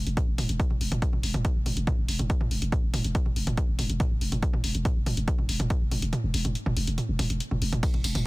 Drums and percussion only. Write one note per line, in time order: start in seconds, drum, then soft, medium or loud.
0.07 closed hi-hat medium
0.17 kick loud
0.17 closed hi-hat medium
0.17 mid tom medium
0.38 mid tom medium
0.38 open hi-hat loud
0.49 closed hi-hat medium
0.60 kick loud
0.60 closed hi-hat medium
0.70 mid tom medium
0.81 open hi-hat loud
0.92 closed hi-hat medium
0.92 mid tom medium
1.02 kick loud
1.02 closed hi-hat medium
1.13 mid tom medium
1.23 open hi-hat loud
1.34 closed hi-hat medium
1.34 mid tom medium
1.45 kick loud
1.45 closed hi-hat medium
1.66 mid tom medium
1.66 open hi-hat medium
1.77 closed hi-hat medium
1.87 kick loud
1.87 closed hi-hat medium
1.87 mid tom loud
2.08 open hi-hat loud
2.19 closed hi-hat medium
2.19 mid tom medium
2.30 kick loud
2.30 closed hi-hat medium
2.41 mid tom medium
2.51 open hi-hat medium
2.62 closed hi-hat medium
2.72 kick loud
2.72 closed hi-hat medium
2.72 mid tom medium
2.94 mid tom loud
2.94 open hi-hat loud
3.04 closed hi-hat medium
3.15 kick loud
3.15 closed hi-hat medium
3.26 mid tom medium
3.36 open hi-hat medium
3.47 closed hi-hat medium
3.47 mid tom medium
3.57 kick loud
3.57 closed hi-hat medium
3.79 mid tom medium
3.79 open hi-hat loud
3.90 closed hi-hat medium
4.00 kick loud
4.00 closed hi-hat medium
4.00 mid tom loud
4.21 open hi-hat medium
4.32 closed hi-hat medium
4.32 mid tom medium
4.43 kick loud
4.43 closed hi-hat medium
4.53 mid tom loud
4.64 open hi-hat loud
4.75 closed hi-hat medium
4.85 kick loud
4.85 closed hi-hat medium
4.85 mid tom medium
5.06 mid tom medium
5.06 open hi-hat medium
5.17 closed hi-hat medium
5.28 kick loud
5.28 closed hi-hat medium
5.38 mid tom medium
5.49 open hi-hat loud
5.60 closed hi-hat medium
5.60 mid tom medium
5.70 kick loud
5.70 closed hi-hat medium
5.91 mid tom medium
5.91 open hi-hat medium
6.02 closed hi-hat medium
6.13 closed hi-hat medium
6.13 mid tom medium
6.34 open hi-hat loud
6.45 closed hi-hat medium
6.45 mid tom medium
6.55 closed hi-hat medium
6.66 mid tom medium
6.77 open hi-hat medium
6.87 closed hi-hat medium
6.98 closed hi-hat medium
6.98 mid tom medium
7.19 mid tom medium
7.19 open hi-hat loud
7.30 closed hi-hat medium
7.40 closed hi-hat medium
7.51 mid tom medium
7.62 open hi-hat medium
7.73 closed hi-hat medium
7.73 mid tom medium
7.83 kick loud
7.83 closed hi-hat medium
7.83 ride medium
7.83 tambourine soft
7.94 mid tom medium
7.94 ride medium
8.04 open hi-hat loud
8.04 ride medium
8.04 tambourine medium
8.15 closed hi-hat medium
8.15 mid tom medium
8.15 ride medium
8.15 tambourine soft